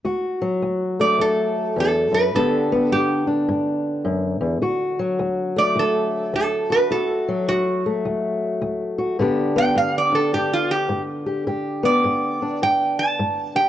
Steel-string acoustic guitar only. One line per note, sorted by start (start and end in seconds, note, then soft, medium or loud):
0.05 0.57 D2 medium
0.05 2.31 F#4 medium
0.42 2.33 F#3 medium
0.62 1.15 D2 medium
1.00 2.34 A3 medium
1.18 1.71 D2 medium
1.76 2.11 E2 medium
2.12 2.33 F#2 medium
2.35 2.87 G2 medium
2.35 6.91 D3 medium
2.35 2.71 B3 medium
2.35 3.27 D4 medium
2.35 4.61 G4 medium
2.72 4.60 B3 medium
2.92 3.44 G2 medium
3.27 5.56 D4 medium
3.48 4.01 G2 medium
4.05 4.40 F#2 medium
4.41 4.61 E2 medium
4.62 5.15 D2 medium
4.62 6.69 F#4 medium
4.99 7.27 F#3 medium
5.19 5.72 D2 medium
5.56 7.84 A3 medium
5.75 6.29 D2 medium
6.33 6.86 D2 medium
6.70 6.88 F#4 medium
6.91 7.43 D2 medium
6.91 8.97 F#4 medium
7.28 9.20 F#3 medium
7.48 8.01 D2 medium
7.86 9.20 A3 soft
8.05 8.58 D2 medium
8.62 9.15 D2 medium
8.98 9.16 F#4 medium
9.19 9.72 G2 medium
9.19 13.69 D3 medium
9.19 9.56 B3 medium
9.19 10.12 D4 medium
9.19 11.25 G4 medium
9.56 11.45 B3 medium
9.75 10.29 G2 medium
10.12 12.42 D4 medium
10.33 10.86 G2 medium
10.89 11.42 G2 medium
11.26 11.45 G4 medium
11.47 12.00 G2 medium
11.47 13.54 G4 medium
11.83 13.69 B3 medium
12.04 12.57 G2 medium
12.42 13.69 D4 medium
12.62 13.15 G2 medium
13.19 13.69 G2 medium
13.55 13.69 G4 medium